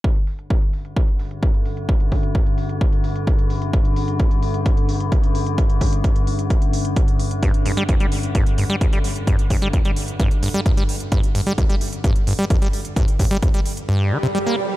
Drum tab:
HH |-xoxxxoxxxoxxxox|xxoxxxoxxxoxxxox|xxoxxxoxxxoxxxox|xxoxxxoxxxoxxxox|
BD |o---o---o---o---|o-o-o---o---o---|o---o---o---o---|o-o-o---o---o---|

HH |xxoxxxoxxxoxxxox|xxoxxxoxxxoxxxox|xxoxxxoxxxoxxxox|xxoxxxox--------|
BD |o---o---o---o---|o-o-o---o---o---|o---o---o---o---|o-o-o-----------|